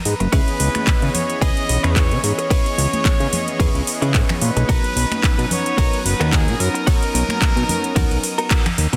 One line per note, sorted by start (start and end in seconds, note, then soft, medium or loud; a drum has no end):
0.00 0.29 B3 medium
0.00 0.29 A#5 medium
0.00 0.29 D#6 medium
0.05 0.15 G#2 medium
0.05 1.11 B4 loud
0.05 open hi-hat loud
0.20 0.28 F#1 medium
0.20 muted clean electric guitar stroke medium
0.20 closed hi-hat soft
0.20 high conga medium
0.32 0.42 C#2 loud
0.32 0.71 E3 medium
0.32 0.71 B3 medium
0.32 0.47 C#4 loud
0.32 0.71 C#4 medium
0.32 0.47 E4 medium
0.32 0.48 G#4 loud
0.32 0.71 G#4 medium
0.32 0.48 B4 loud
0.32 4.65 C#5 medium
0.32 0.71 D#5 medium
0.32 2.49 B5 medium
0.32 kick loud
0.32 closed hi-hat medium
0.32 ride medium
0.48 closed hi-hat soft
0.60 0.69 C#2 medium
0.60 muted clean electric guitar stroke soft
0.60 open hi-hat loud
0.74 1.66 E3 medium
0.74 1.66 B3 medium
0.74 1.67 C#4 medium
0.74 1.67 G#4 loud
0.74 1.67 D#5 medium
0.74 finger snap medium
0.74 closed hi-hat soft
0.74 high conga medium
0.87 kick loud
0.87 clap loud
0.87 closed hi-hat medium
0.87 ride medium
1.02 1.10 C#3 medium
1.02 muted clean electric guitar stroke soft
1.02 closed hi-hat soft
1.14 1.42 C#5 loud
1.14 open hi-hat loud
1.14 low conga medium
1.30 closed hi-hat soft
1.41 1.51 C#2 loud
1.41 1.63 C#4 loud
1.41 1.63 E4 medium
1.41 1.63 G#4 medium
1.41 1.63 B4 loud
1.41 1.84 D#5 loud
1.41 kick loud
1.41 closed hi-hat medium
1.41 ride medium
1.57 closed hi-hat soft
1.68 1.78 B1 loud
1.68 2.47 E3 medium
1.68 2.48 B3 medium
1.68 2.48 C#4 medium
1.68 2.48 G#4 medium
1.68 2.48 D#5 medium
1.68 open hi-hat loud
1.83 2.13 E2 loud
1.83 2.11 C#4 medium
1.83 2.11 E4 medium
1.83 2.11 G#4 medium
1.83 2.11 B4 loud
1.83 1.90 C#5 loud
1.83 finger snap medium
1.83 closed hi-hat soft
1.90 1.97 B4 medium
1.96 2.22 C#5 loud
1.96 kick loud
1.96 clap loud
1.96 closed hi-hat medium
1.96 ride medium
2.11 2.19 C#3 medium
2.11 closed hi-hat soft
2.24 2.33 G#2 medium
2.24 4.11 C#5 loud
2.24 open hi-hat medium
2.38 muted clean electric guitar stroke medium
2.38 closed hi-hat soft
2.50 2.89 E3 medium
2.50 2.89 B3 medium
2.50 2.65 C#4 loud
2.50 2.89 C#4 medium
2.50 2.66 E4 loud
2.50 2.66 G#4 loud
2.50 2.90 G#4 medium
2.50 2.66 B4 loud
2.50 2.89 D#5 medium
2.50 4.67 C#6 medium
2.50 kick loud
2.50 closed hi-hat medium
2.50 ride medium
2.66 closed hi-hat soft
2.78 2.87 C#2 medium
2.78 muted clean electric guitar stroke soft
2.78 open hi-hat loud
2.92 3.84 E3 medium
2.92 3.85 B3 medium
2.92 3.85 C#4 medium
2.92 3.85 G#4 loud
2.92 3.85 D#5 medium
2.92 closed hi-hat soft
2.92 high conga medium
3.05 kick loud
3.05 clap loud
3.05 closed hi-hat medium
3.05 ride medium
3.20 3.28 C#3 medium
3.20 muted clean electric guitar stroke soft
3.20 closed hi-hat soft
3.33 open hi-hat medium
3.33 high conga medium
3.33 low conga medium
3.48 closed hi-hat soft
3.59 3.69 E2 loud
3.59 3.81 C#4 loud
3.59 3.81 E4 medium
3.59 3.81 G#4 medium
3.59 3.81 B4 loud
3.59 kick loud
3.59 closed hi-hat medium
3.59 ride medium
3.59 low conga medium
3.75 3.82 C#2 medium
3.75 closed hi-hat soft
3.86 4.66 E3 medium
3.86 4.66 B3 medium
3.86 4.66 C#4 medium
3.86 4.67 G#4 medium
3.86 4.66 D#5 medium
3.86 open hi-hat loud
4.02 4.16 C#3 loud
4.02 4.29 C#4 medium
4.02 4.29 E4 medium
4.02 4.29 G#4 medium
4.02 4.29 B4 loud
4.02 closed hi-hat soft
4.14 4.23 G#2 medium
4.14 kick loud
4.14 clap loud
4.14 closed hi-hat medium
4.14 ride medium
4.29 finger snap medium
4.29 closed hi-hat soft
4.29 low conga medium
4.42 4.51 A#2 medium
4.42 5.47 B4 loud
4.42 open hi-hat medium
4.56 4.64 B1 medium
4.56 muted clean electric guitar stroke medium
4.56 closed hi-hat soft
4.56 high conga medium
4.68 4.78 B1 loud
4.68 5.07 F#3 medium
4.68 4.84 B3 loud
4.68 8.96 B3 medium
4.68 5.07 B3 medium
4.68 5.08 C#4 medium
4.68 5.08 D#4 medium
4.68 4.84 D#4 loud
4.68 4.84 F#4 loud
4.68 4.84 A#4 loud
4.68 5.08 B4 medium
4.68 8.96 A#5 medium
4.68 8.96 D#6 medium
4.68 kick loud
4.68 closed hi-hat medium
4.68 ride medium
4.84 closed hi-hat soft
4.96 5.05 B1 medium
4.96 muted clean electric guitar stroke soft
4.96 open hi-hat loud
5.10 6.02 F#3 medium
5.10 6.03 B3 medium
5.10 6.03 C#4 medium
5.10 6.03 D#4 medium
5.10 6.03 B4 loud
5.10 finger snap medium
5.10 closed hi-hat soft
5.10 high conga medium
5.23 kick loud
5.23 clap loud
5.23 closed hi-hat medium
5.23 ride medium
5.38 5.46 B2 medium
5.38 muted clean electric guitar stroke soft
5.38 closed hi-hat soft
5.51 6.06 C#5 loud
5.51 open hi-hat medium
5.51 low conga medium
5.66 closed hi-hat soft
5.77 5.87 B1 medium
5.77 5.99 B3 loud
5.77 5.99 D#4 medium
5.77 5.99 F#4 medium
5.77 5.99 A#4 loud
5.77 kick loud
5.77 closed hi-hat medium
5.77 ride medium
5.93 closed hi-hat soft
6.04 6.14 F#1 loud
6.04 6.84 F#3 medium
6.04 6.84 B3 medium
6.04 6.84 C#4 medium
6.04 6.84 D#4 medium
6.04 6.85 A#4 medium
6.04 6.30 B4 loud
6.04 open hi-hat loud
6.20 6.49 D#2 loud
6.20 6.47 B3 medium
6.20 6.47 D#4 medium
6.20 6.47 F#4 medium
6.20 6.48 A#4 loud
6.20 finger snap medium
6.20 closed hi-hat soft
6.33 6.60 G#4 loud
6.33 kick loud
6.33 clap loud
6.33 closed hi-hat medium
6.33 ride medium
6.48 6.55 B2 medium
6.48 closed hi-hat soft
6.60 6.69 F#2 medium
6.60 6.86 A#4 loud
6.60 open hi-hat medium
6.74 muted clean electric guitar stroke medium
6.74 closed hi-hat soft
6.86 7.25 F#3 medium
6.86 7.02 B3 loud
6.86 7.26 B3 medium
6.86 7.26 C#4 medium
6.86 7.02 D#4 loud
6.86 7.26 D#4 medium
6.86 7.02 F#4 loud
6.86 8.47 A#4 loud
6.86 7.26 A#4 medium
6.86 7.02 C#5 loud
6.86 kick loud
6.86 closed hi-hat medium
6.86 ride medium
7.03 closed hi-hat soft
7.14 7.24 B1 medium
7.14 muted clean electric guitar stroke soft
7.14 open hi-hat loud
7.28 8.20 F#3 medium
7.28 8.21 B3 medium
7.28 8.21 C#4 medium
7.28 8.21 D#4 medium
7.28 8.22 A#4 loud
7.28 finger snap medium
7.28 closed hi-hat soft
7.28 high conga medium
7.42 kick loud
7.42 clap loud
7.42 closed hi-hat medium
7.42 ride medium
7.56 7.64 B2 medium
7.56 muted clean electric guitar stroke soft
7.56 closed hi-hat soft
7.69 open hi-hat medium
7.69 high conga medium
7.69 low conga medium
7.84 closed hi-hat soft
7.95 8.05 D#2 loud
7.95 8.17 B3 loud
7.95 8.17 D#4 medium
7.95 8.17 F#4 medium
7.95 8.17 A#4 loud
7.95 kick loud
7.95 closed hi-hat medium
7.95 ride medium
7.95 low conga medium
8.11 8.19 B1 medium
8.11 closed hi-hat soft
8.24 open hi-hat loud
8.38 8.66 B3 medium
8.38 8.66 D#4 medium
8.38 8.66 F#4 medium
8.38 8.66 A#4 loud
8.38 closed hi-hat soft
8.51 kick loud
8.51 clap loud
8.51 closed hi-hat medium
8.51 ride medium
8.66 finger snap medium
8.66 closed hi-hat soft
8.66 low conga loud
8.78 8.87 D#2 medium
8.78 open hi-hat medium
8.93 8.96 B2 loud
8.93 muted clean electric guitar stroke medium
8.93 closed hi-hat soft